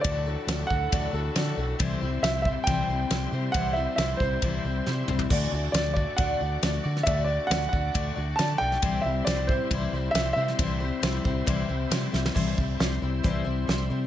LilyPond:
<<
  \new Staff \with { instrumentName = "Grand piano" } { \time 4/4 \key c \lydian \tempo 4 = 136 d''4. fis''2 r8 | r4 e''8 e''8 g''2 | fis''8 e''8 e''8 c''2 r8 | r4 d''8 d''8 fis''2 |
e''8 d''8 fis''8 fis''4. a''8 g''8~ | g''8 e''8 d''8 c''4 r8 e''8 e''8~ | e''2. r4 | r1 | }
  \new Staff \with { instrumentName = "Tonewheel organ" } { \time 4/4 \key c \lydian << { <fis a'>1 | <g c''>1~ | <g c''>1 | <a d''>1~ |
<a d''>1 | <g c''>1~ | <g c''>1 | <g c''>1 | } \\ { e'1~ | e'1~ | e'1 | fis'1~ |
fis'1 | e'1~ | e'1 | e'1 | } >> }
  \new Staff \with { instrumentName = "Twelve-string acoustic guitar" } { \time 4/4 \key c \lydian <d a d' fis' a'>8 <d' fis' a'>8 <a d' fis' a'>8 <d' fis' a'>8 <d a d' fis' a'>8 <d' fis' a'>8 <a d' fis' a'>8 <d' fis' a'>8 | <c e g c' e' c''>8 <g c' e' c''>8 <g c' e' c''>8 <g c' e' c''>8 <c e g c' e' c''>8 <g c' e' c''>8 <g c' e' c''>8 <g c' e' c''>8 | <c e g c' e' c''>8 <g c' e' c''>8 <g c' e' c''>8 <g c' e' c''>8 <c e g c' e' c''>8 <g c' e' c''>8 <g c' e' c''>8 <g c' e' c''>8 | <d a d' fis' d''>8 <d' fis' d''>8 <a d' fis' d''>8 <d' fis' d''>8 <d a d' fis' d''>8 <d' fis' d''>8 <a d' fis' d''>8 <d' fis' d''>8 |
<d a d' fis' d''>8 <d' fis' d''>8 <a d' fis' d''>8 <d' fis' d''>8 <d a d' fis' d''>8 <d' fis' d''>8 <a d' fis' d''>8 <d' fis' d''>8 | <c e g c' e' c''>8 <g c' e' c''>8 <g c' e' c''>8 <g c' e' c''>8 <c e g c' e' c''>8 <g c' e' c''>8 <g c' e' c''>8 <g c' e' c''>8 | <c e g c' e' c''>8 <g c' e' c''>8 <g c' e' c''>8 <g c' e' c''>8 <c e g c' e' c''>8 <g c' e' c''>8 <g c' e' c''>8 <g c' e' c''>8 | <c e g c' e' c''>8 <g c' e' c''>8 <g c' e' c''>8 <g c' e' c''>8 <c e g c' e' c''>8 <g c' e' c''>8 <g c' e' c''>8 <g c' e' c''>8 | }
  \new Staff \with { instrumentName = "Fingered electric bass" } { \clef bass \time 4/4 \key c \lydian d,4 d,8 d,8 d,8 d,8 d8 b,,8 | c,8 c,8 c,4 c,8 c,8 c,8 c8 | c,4 c,8 c,8 c,8 c,8 c8 c,8 | d,8 d,8 d,4 d,8 d,8 d,8 d8 |
d,4 d,8 d,8 d,8 d,8 d8 b,,8 | c,8 c,8 c,4 c,8 c,8 c,8 c8 | c,4 c,8 c,8 c,8 c,8 c8 c,8 | c,8 c,8 c,8 c,8 c,8 c,8 c,8 c8 | }
  \new DrumStaff \with { instrumentName = "Drums" } \drummode { \time 4/4 <bd rb>4 <rb sn>8 bd8 <bd rb>4 <rb sn>4 | <bd rb>4 <rb sn>8 bd8 <bd rb>4 <rb sn>4 | <bd rb>4 <rb sn>8 bd8 <bd rb>4 sn8 toml16 tomfh16 | <cymc bd>4 <rb sn>8 bd8 <bd rb>4 <rb sn>8. sn16 |
<bd rb>4 <rb sn>8 bd8 <bd rb>4 <rb sn>8. sn16 | <bd rb>4 <rb sn>8 bd8 <bd rb>4 <rb sn>8. sn16 | <bd rb>4 <rb sn>8 bd8 <bd rb>4 <rb sn>8 sn16 sn16 | <cymc bd>8 bd8 <hh sn>4 <hh bd>4 <hh sn>4 | }
>>